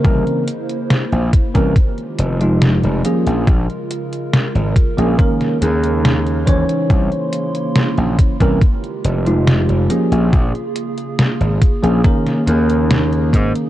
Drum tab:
HH |xxxxxxxxxxxxxxxx|xxxxxxxxxxxxxxxx|xxxxxxxxxxxxxxxx|xxxxxxxxxxxxxxxx|
SD |----o-------o---|----o----o--o---|----o-------o---|----o----o--o---|
BD |o-----ooo-------|o-----o-o-----o-|o-----ooo-------|o-----o-o-----o-|